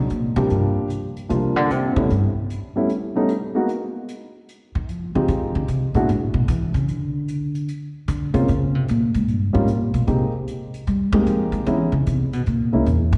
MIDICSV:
0, 0, Header, 1, 4, 480
1, 0, Start_track
1, 0, Key_signature, -3, "major"
1, 0, Tempo, 398936
1, 597, Time_signature, 4, 2, 24, 8
1, 12116, Key_signature, -4, "major"
1, 15855, End_track
2, 0, Start_track
2, 0, Title_t, "Upright piano"
2, 0, Program_c, 0, 0
2, 435, Note_on_c, 0, 55, 55
2, 436, Note_on_c, 0, 53, 60
2, 441, Note_on_c, 0, 58, 51
2, 445, Note_on_c, 0, 62, 53
2, 446, Note_on_c, 0, 67, 66
2, 1046, Note_off_c, 0, 53, 0
2, 1046, Note_off_c, 0, 55, 0
2, 1049, Note_off_c, 0, 58, 0
2, 1051, Note_off_c, 0, 62, 0
2, 1051, Note_off_c, 0, 67, 0
2, 1555, Note_on_c, 0, 53, 54
2, 1560, Note_on_c, 0, 55, 48
2, 1562, Note_on_c, 0, 58, 50
2, 1564, Note_on_c, 0, 62, 50
2, 1571, Note_on_c, 0, 65, 59
2, 2294, Note_off_c, 0, 53, 0
2, 2296, Note_off_c, 0, 55, 0
2, 2297, Note_off_c, 0, 58, 0
2, 2298, Note_off_c, 0, 62, 0
2, 2301, Note_off_c, 0, 65, 0
2, 2355, Note_on_c, 0, 55, 59
2, 2356, Note_on_c, 0, 57, 55
2, 2360, Note_on_c, 0, 59, 53
2, 2363, Note_on_c, 0, 61, 52
2, 2365, Note_on_c, 0, 64, 64
2, 2503, Note_off_c, 0, 55, 0
2, 2503, Note_off_c, 0, 57, 0
2, 2505, Note_off_c, 0, 59, 0
2, 2507, Note_off_c, 0, 61, 0
2, 2508, Note_off_c, 0, 64, 0
2, 3317, Note_on_c, 0, 55, 53
2, 3321, Note_on_c, 0, 57, 49
2, 3324, Note_on_c, 0, 59, 48
2, 3331, Note_on_c, 0, 61, 49
2, 3332, Note_on_c, 0, 64, 60
2, 3464, Note_off_c, 0, 55, 0
2, 3466, Note_off_c, 0, 57, 0
2, 3468, Note_off_c, 0, 59, 0
2, 3471, Note_off_c, 0, 61, 0
2, 3472, Note_off_c, 0, 64, 0
2, 3796, Note_on_c, 0, 55, 62
2, 3802, Note_on_c, 0, 57, 59
2, 3804, Note_on_c, 0, 59, 55
2, 3806, Note_on_c, 0, 61, 55
2, 3807, Note_on_c, 0, 63, 68
2, 3944, Note_off_c, 0, 55, 0
2, 3947, Note_off_c, 0, 57, 0
2, 3948, Note_off_c, 0, 59, 0
2, 3949, Note_off_c, 0, 61, 0
2, 3950, Note_off_c, 0, 63, 0
2, 4265, Note_on_c, 0, 56, 55
2, 4270, Note_on_c, 0, 58, 49
2, 4274, Note_on_c, 0, 59, 52
2, 4278, Note_on_c, 0, 63, 52
2, 4281, Note_on_c, 0, 66, 64
2, 4419, Note_off_c, 0, 56, 0
2, 4421, Note_off_c, 0, 58, 0
2, 4423, Note_off_c, 0, 59, 0
2, 4425, Note_off_c, 0, 63, 0
2, 4427, Note_off_c, 0, 66, 0
2, 6198, Note_on_c, 0, 56, 54
2, 6199, Note_on_c, 0, 60, 54
2, 6205, Note_on_c, 0, 63, 51
2, 6209, Note_on_c, 0, 65, 50
2, 6211, Note_on_c, 0, 67, 61
2, 6809, Note_off_c, 0, 56, 0
2, 6810, Note_off_c, 0, 60, 0
2, 6812, Note_off_c, 0, 63, 0
2, 6814, Note_off_c, 0, 65, 0
2, 6815, Note_off_c, 0, 67, 0
2, 7159, Note_on_c, 0, 56, 63
2, 7160, Note_on_c, 0, 59, 58
2, 7160, Note_on_c, 0, 62, 57
2, 7167, Note_on_c, 0, 64, 60
2, 7170, Note_on_c, 0, 66, 70
2, 7305, Note_off_c, 0, 56, 0
2, 7306, Note_off_c, 0, 59, 0
2, 7306, Note_off_c, 0, 62, 0
2, 7309, Note_off_c, 0, 64, 0
2, 7311, Note_off_c, 0, 66, 0
2, 10030, Note_on_c, 0, 56, 64
2, 10032, Note_on_c, 0, 58, 59
2, 10036, Note_on_c, 0, 60, 59
2, 10040, Note_on_c, 0, 61, 58
2, 10043, Note_on_c, 0, 65, 71
2, 10179, Note_off_c, 0, 56, 0
2, 10180, Note_off_c, 0, 58, 0
2, 10182, Note_off_c, 0, 60, 0
2, 10184, Note_off_c, 0, 61, 0
2, 10185, Note_off_c, 0, 65, 0
2, 11467, Note_on_c, 0, 55, 61
2, 11472, Note_on_c, 0, 61, 56
2, 11473, Note_on_c, 0, 58, 58
2, 11480, Note_on_c, 0, 63, 53
2, 11481, Note_on_c, 0, 65, 67
2, 11616, Note_off_c, 0, 55, 0
2, 11619, Note_off_c, 0, 58, 0
2, 11619, Note_off_c, 0, 61, 0
2, 11623, Note_off_c, 0, 63, 0
2, 11623, Note_off_c, 0, 65, 0
2, 12116, Note_on_c, 0, 56, 50
2, 12118, Note_on_c, 0, 58, 46
2, 12121, Note_on_c, 0, 60, 47
2, 12124, Note_on_c, 0, 63, 49
2, 12126, Note_on_c, 0, 67, 55
2, 12402, Note_off_c, 0, 56, 0
2, 12404, Note_off_c, 0, 58, 0
2, 12405, Note_off_c, 0, 60, 0
2, 12407, Note_off_c, 0, 63, 0
2, 12408, Note_off_c, 0, 67, 0
2, 13398, Note_on_c, 0, 58, 52
2, 13399, Note_on_c, 0, 56, 62
2, 13402, Note_on_c, 0, 60, 52
2, 13404, Note_on_c, 0, 63, 55
2, 13409, Note_on_c, 0, 67, 64
2, 14004, Note_off_c, 0, 56, 0
2, 14004, Note_off_c, 0, 58, 0
2, 14006, Note_off_c, 0, 60, 0
2, 14007, Note_off_c, 0, 63, 0
2, 14010, Note_off_c, 0, 67, 0
2, 14029, Note_on_c, 0, 56, 53
2, 14032, Note_on_c, 0, 59, 47
2, 14036, Note_on_c, 0, 61, 50
2, 14037, Note_on_c, 0, 63, 53
2, 14040, Note_on_c, 0, 64, 63
2, 14318, Note_off_c, 0, 56, 0
2, 14320, Note_off_c, 0, 59, 0
2, 14321, Note_off_c, 0, 61, 0
2, 14322, Note_off_c, 0, 63, 0
2, 14324, Note_off_c, 0, 64, 0
2, 15310, Note_on_c, 0, 56, 52
2, 15313, Note_on_c, 0, 58, 48
2, 15317, Note_on_c, 0, 61, 48
2, 15319, Note_on_c, 0, 63, 47
2, 15322, Note_on_c, 0, 64, 58
2, 15456, Note_off_c, 0, 56, 0
2, 15457, Note_off_c, 0, 58, 0
2, 15459, Note_off_c, 0, 61, 0
2, 15460, Note_off_c, 0, 63, 0
2, 15462, Note_off_c, 0, 64, 0
2, 15855, End_track
3, 0, Start_track
3, 0, Title_t, "Upright bass"
3, 0, Program_c, 1, 32
3, 125, Note_on_c, 1, 46, 72
3, 427, Note_off_c, 1, 46, 0
3, 434, Note_on_c, 1, 48, 99
3, 592, Note_off_c, 1, 48, 0
3, 608, Note_on_c, 1, 43, 53
3, 913, Note_off_c, 1, 43, 0
3, 1567, Note_on_c, 1, 48, 77
3, 1878, Note_off_c, 1, 48, 0
3, 1878, Note_on_c, 1, 50, 100
3, 2054, Note_off_c, 1, 50, 0
3, 2054, Note_on_c, 1, 48, 80
3, 2354, Note_off_c, 1, 48, 0
3, 2361, Note_on_c, 1, 50, 97
3, 2517, Note_off_c, 1, 50, 0
3, 2534, Note_on_c, 1, 43, 74
3, 2722, Note_off_c, 1, 43, 0
3, 5717, Note_on_c, 1, 51, 82
3, 5886, Note_off_c, 1, 51, 0
3, 5886, Note_on_c, 1, 53, 85
3, 6194, Note_off_c, 1, 53, 0
3, 6201, Note_on_c, 1, 50, 86
3, 6349, Note_off_c, 1, 50, 0
3, 6356, Note_on_c, 1, 51, 89
3, 6669, Note_off_c, 1, 51, 0
3, 6679, Note_on_c, 1, 50, 82
3, 6830, Note_off_c, 1, 50, 0
3, 6837, Note_on_c, 1, 48, 74
3, 7145, Note_off_c, 1, 48, 0
3, 7152, Note_on_c, 1, 46, 79
3, 7313, Note_off_c, 1, 46, 0
3, 7328, Note_on_c, 1, 44, 76
3, 7619, Note_off_c, 1, 44, 0
3, 7626, Note_on_c, 1, 47, 92
3, 7790, Note_off_c, 1, 47, 0
3, 7799, Note_on_c, 1, 52, 95
3, 8104, Note_off_c, 1, 52, 0
3, 8111, Note_on_c, 1, 49, 82
3, 8279, Note_off_c, 1, 49, 0
3, 8279, Note_on_c, 1, 50, 76
3, 9239, Note_off_c, 1, 50, 0
3, 9721, Note_on_c, 1, 50, 88
3, 10030, Note_off_c, 1, 50, 0
3, 10034, Note_on_c, 1, 48, 88
3, 10192, Note_off_c, 1, 48, 0
3, 10213, Note_on_c, 1, 49, 87
3, 10526, Note_off_c, 1, 49, 0
3, 10526, Note_on_c, 1, 48, 89
3, 10678, Note_off_c, 1, 48, 0
3, 10698, Note_on_c, 1, 46, 82
3, 10997, Note_off_c, 1, 46, 0
3, 11002, Note_on_c, 1, 44, 87
3, 11174, Note_off_c, 1, 44, 0
3, 11174, Note_on_c, 1, 43, 84
3, 11475, Note_off_c, 1, 43, 0
3, 11485, Note_on_c, 1, 44, 89
3, 11652, Note_off_c, 1, 44, 0
3, 11652, Note_on_c, 1, 46, 82
3, 11954, Note_off_c, 1, 46, 0
3, 11958, Note_on_c, 1, 47, 88
3, 12113, Note_off_c, 1, 47, 0
3, 12122, Note_on_c, 1, 48, 77
3, 12311, Note_off_c, 1, 48, 0
3, 13082, Note_on_c, 1, 55, 80
3, 13378, Note_off_c, 1, 55, 0
3, 13385, Note_on_c, 1, 56, 111
3, 13545, Note_off_c, 1, 56, 0
3, 13557, Note_on_c, 1, 53, 90
3, 13854, Note_off_c, 1, 53, 0
3, 13861, Note_on_c, 1, 51, 89
3, 14023, Note_off_c, 1, 51, 0
3, 14035, Note_on_c, 1, 52, 94
3, 14335, Note_off_c, 1, 52, 0
3, 14343, Note_on_c, 1, 49, 84
3, 14503, Note_off_c, 1, 49, 0
3, 14520, Note_on_c, 1, 48, 77
3, 14836, Note_off_c, 1, 48, 0
3, 14836, Note_on_c, 1, 47, 89
3, 14990, Note_off_c, 1, 47, 0
3, 15002, Note_on_c, 1, 46, 80
3, 15307, Note_off_c, 1, 46, 0
3, 15316, Note_on_c, 1, 37, 47
3, 15470, Note_off_c, 1, 37, 0
3, 15480, Note_on_c, 1, 40, 78
3, 15786, Note_off_c, 1, 40, 0
3, 15793, Note_on_c, 1, 44, 97
3, 15855, Note_off_c, 1, 44, 0
3, 15855, End_track
4, 0, Start_track
4, 0, Title_t, "Drums"
4, 115, Note_on_c, 9, 42, 49
4, 235, Note_off_c, 9, 42, 0
4, 432, Note_on_c, 9, 42, 40
4, 553, Note_off_c, 9, 42, 0
4, 599, Note_on_c, 9, 42, 38
4, 719, Note_off_c, 9, 42, 0
4, 1078, Note_on_c, 9, 42, 47
4, 1198, Note_off_c, 9, 42, 0
4, 1400, Note_on_c, 9, 42, 44
4, 1520, Note_off_c, 9, 42, 0
4, 1560, Note_on_c, 9, 42, 38
4, 1681, Note_off_c, 9, 42, 0
4, 2047, Note_on_c, 9, 42, 49
4, 2168, Note_off_c, 9, 42, 0
4, 2527, Note_on_c, 9, 42, 41
4, 2647, Note_off_c, 9, 42, 0
4, 3006, Note_on_c, 9, 42, 48
4, 3127, Note_off_c, 9, 42, 0
4, 3481, Note_on_c, 9, 42, 41
4, 3602, Note_off_c, 9, 42, 0
4, 3953, Note_on_c, 9, 42, 48
4, 4073, Note_off_c, 9, 42, 0
4, 4435, Note_on_c, 9, 42, 40
4, 4555, Note_off_c, 9, 42, 0
4, 4913, Note_on_c, 9, 42, 50
4, 5033, Note_off_c, 9, 42, 0
4, 5397, Note_on_c, 9, 42, 39
4, 5517, Note_off_c, 9, 42, 0
4, 5880, Note_on_c, 9, 42, 48
4, 6000, Note_off_c, 9, 42, 0
4, 6359, Note_on_c, 9, 42, 39
4, 6480, Note_off_c, 9, 42, 0
4, 6836, Note_on_c, 9, 42, 51
4, 6956, Note_off_c, 9, 42, 0
4, 7156, Note_on_c, 9, 42, 46
4, 7277, Note_off_c, 9, 42, 0
4, 7322, Note_on_c, 9, 42, 39
4, 7443, Note_off_c, 9, 42, 0
4, 7795, Note_on_c, 9, 42, 49
4, 7915, Note_off_c, 9, 42, 0
4, 8116, Note_on_c, 9, 42, 40
4, 8237, Note_off_c, 9, 42, 0
4, 8279, Note_on_c, 9, 42, 42
4, 8399, Note_off_c, 9, 42, 0
4, 8759, Note_on_c, 9, 42, 54
4, 8879, Note_off_c, 9, 42, 0
4, 9079, Note_on_c, 9, 42, 45
4, 9200, Note_off_c, 9, 42, 0
4, 9243, Note_on_c, 9, 42, 43
4, 9363, Note_off_c, 9, 42, 0
4, 9719, Note_on_c, 9, 42, 53
4, 9840, Note_off_c, 9, 42, 0
4, 10042, Note_on_c, 9, 42, 42
4, 10162, Note_off_c, 9, 42, 0
4, 10202, Note_on_c, 9, 42, 42
4, 10322, Note_off_c, 9, 42, 0
4, 10686, Note_on_c, 9, 42, 50
4, 10806, Note_off_c, 9, 42, 0
4, 11001, Note_on_c, 9, 42, 46
4, 11121, Note_off_c, 9, 42, 0
4, 11166, Note_on_c, 9, 42, 40
4, 11286, Note_off_c, 9, 42, 0
4, 11642, Note_on_c, 9, 42, 51
4, 11763, Note_off_c, 9, 42, 0
4, 11960, Note_on_c, 9, 42, 44
4, 12080, Note_off_c, 9, 42, 0
4, 12119, Note_on_c, 9, 42, 39
4, 12239, Note_off_c, 9, 42, 0
4, 12602, Note_on_c, 9, 42, 50
4, 12723, Note_off_c, 9, 42, 0
4, 12918, Note_on_c, 9, 42, 41
4, 13039, Note_off_c, 9, 42, 0
4, 13075, Note_on_c, 9, 42, 39
4, 13196, Note_off_c, 9, 42, 0
4, 13553, Note_on_c, 9, 42, 48
4, 13673, Note_off_c, 9, 42, 0
4, 13868, Note_on_c, 9, 42, 38
4, 13988, Note_off_c, 9, 42, 0
4, 14034, Note_on_c, 9, 42, 39
4, 14154, Note_off_c, 9, 42, 0
4, 14514, Note_on_c, 9, 42, 49
4, 14634, Note_off_c, 9, 42, 0
4, 14833, Note_on_c, 9, 42, 42
4, 14953, Note_off_c, 9, 42, 0
4, 14991, Note_on_c, 9, 42, 38
4, 15111, Note_off_c, 9, 42, 0
4, 15473, Note_on_c, 9, 42, 49
4, 15594, Note_off_c, 9, 42, 0
4, 15792, Note_on_c, 9, 42, 41
4, 15855, Note_off_c, 9, 42, 0
4, 15855, End_track
0, 0, End_of_file